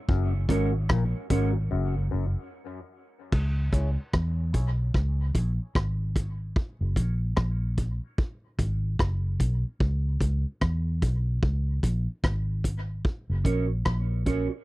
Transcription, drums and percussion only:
0.09 kick
0.49 kick, closed hi-hat
0.89 kick, cross-stick
1.30 kick, closed hi-hat
3.32 kick, crash
3.73 kick, closed hi-hat
4.13 kick, cross-stick
4.54 kick, closed hi-hat
4.94 kick, cross-stick
5.35 kick, closed hi-hat
5.75 kick, cross-stick
6.16 kick, closed hi-hat
6.56 kick
6.96 kick, closed hi-hat
7.37 kick, cross-stick
7.77 kick, closed hi-hat
8.18 kick
8.59 kick, closed hi-hat
8.99 kick, cross-stick
9.40 kick, closed hi-hat
9.80 kick
10.21 kick, closed hi-hat
10.61 kick, cross-stick
11.02 kick, closed hi-hat
11.43 kick
11.83 kick, closed hi-hat
12.24 kick, cross-stick
12.64 kick, closed hi-hat
13.05 kick
13.45 kick, closed hi-hat
13.85 kick, cross-stick
14.26 kick, closed hi-hat

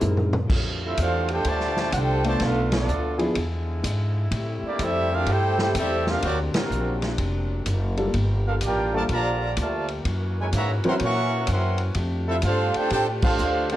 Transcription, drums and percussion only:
0.01 hi-hat pedal, mid tom
0.17 mid tom
0.33 mid tom
0.50 kick, crash
0.97 kick, hi-hat pedal, ride
1.28 ride
1.44 kick, ride
1.60 snare
1.77 snare
1.92 kick, hi-hat pedal, ride
2.24 ride
2.40 kick, snare, ride
2.72 snare, ride
2.88 hi-hat pedal
3.20 ride
3.35 kick, ride
3.84 kick, hi-hat pedal, ride
4.31 kick, ride
4.79 kick, hi-hat pedal, ride
5.26 kick, ride
5.59 snare
5.75 kick, hi-hat pedal, ride
6.06 snare
6.22 kick, ride
6.54 snare, ride
6.71 hi-hat pedal
7.02 snare, ride
7.18 kick, ride
7.66 kick, hi-hat pedal, ride
7.97 ride
8.13 kick, ride
8.61 kick, hi-hat pedal, ride
9.09 kick, ride
9.57 kick, hi-hat pedal, ride
9.88 ride
10.05 kick, ride
10.52 kick, hi-hat pedal, ride
10.83 ride
10.99 kick, ride
11.47 kick, hi-hat pedal, ride
11.78 ride
11.95 kick, ride
12.42 kick, hi-hat pedal, ride
12.74 ride
12.90 kick, ride
13.22 kick, crash
13.38 hi-hat pedal
13.70 ride

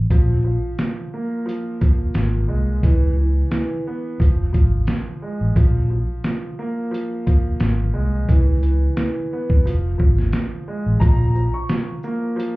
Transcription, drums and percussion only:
0.10 kick, closed hi-hat
0.79 snare, closed hi-hat
1.49 closed hi-hat
1.81 kick, closed hi-hat
2.14 snare, closed hi-hat
2.83 kick, closed hi-hat
3.51 snare, closed hi-hat
4.20 kick, closed hi-hat
4.54 kick, closed hi-hat
4.87 snare, closed hi-hat
5.56 kick, closed hi-hat
6.24 snare, closed hi-hat
6.94 closed hi-hat
7.27 kick, closed hi-hat
7.60 snare, closed hi-hat
8.29 kick, closed hi-hat
8.63 closed hi-hat
8.97 snare, closed hi-hat
9.50 kick
9.67 closed hi-hat
10.00 kick
10.18 snare
10.33 snare, closed hi-hat
11.01 kick, closed hi-hat
11.35 shaker
11.69 snare, closed hi-hat
12.03 shaker
12.40 closed hi-hat

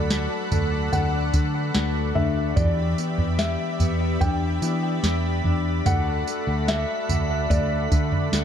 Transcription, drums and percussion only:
0.10 snare, tambourine
0.52 floor tom, tambourine
0.93 floor tom, tambourine
1.34 kick, tambourine
1.74 snare, tambourine
2.16 floor tom
2.57 kick, floor tom, tambourine
2.98 tambourine
3.18 floor tom
3.39 snare, tambourine
3.80 floor tom, tambourine
4.21 kick, floor tom, tambourine
4.62 tambourine
5.04 snare, tambourine
5.45 floor tom
5.86 floor tom, tambourine
6.27 tambourine
6.68 snare, tambourine
7.09 floor tom, tambourine
7.50 kick, floor tom, tambourine
7.92 kick, tambourine
8.12 floor tom
8.33 snare, tambourine

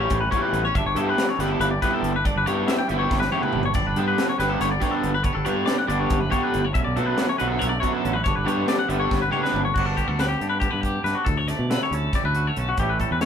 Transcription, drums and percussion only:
0.10 kick, closed hi-hat
0.32 kick, closed hi-hat
0.54 closed hi-hat
0.75 kick, closed hi-hat
0.96 closed hi-hat
1.18 snare, closed hi-hat
1.40 snare, closed hi-hat
1.61 closed hi-hat
1.82 kick, snare, closed hi-hat
2.04 closed hi-hat
2.25 kick, closed hi-hat
2.47 closed hi-hat
2.68 snare, closed hi-hat
2.89 closed hi-hat
3.11 kick, snare
3.22 snare
3.32 high tom
3.43 mid tom
3.53 mid tom
3.63 floor tom
3.74 kick, closed hi-hat, splash
3.96 closed hi-hat
4.18 snare, closed hi-hat
4.40 snare, closed hi-hat
4.61 snare, closed hi-hat
4.82 kick, snare, closed hi-hat
5.04 closed hi-hat
5.24 kick, closed hi-hat
5.46 closed hi-hat
5.68 snare, closed hi-hat
5.90 closed hi-hat
6.10 kick, closed hi-hat
6.32 kick, closed hi-hat
6.54 closed hi-hat
6.75 kick, closed hi-hat
6.97 closed hi-hat
7.18 snare, closed hi-hat
7.40 closed hi-hat
7.61 closed hi-hat
7.83 kick, closed hi-hat
8.05 closed hi-hat
8.26 kick, closed hi-hat
8.48 closed hi-hat
8.68 snare, closed hi-hat
8.90 closed hi-hat
9.11 kick, snare
9.33 mid tom
9.45 snare
9.56 floor tom
9.76 kick, crash
9.97 kick, closed hi-hat
10.19 snare, closed hi-hat
10.41 closed hi-hat
10.62 kick, closed hi-hat
10.83 kick, closed hi-hat
11.06 snare, closed hi-hat
11.26 kick, closed hi-hat
11.48 snare, closed hi-hat
11.71 snare, closed hi-hat
11.93 closed hi-hat
12.13 kick, snare, closed hi-hat
12.35 closed hi-hat
12.57 closed hi-hat
12.77 kick, closed hi-hat
13.00 kick, closed hi-hat
13.21 snare, closed hi-hat

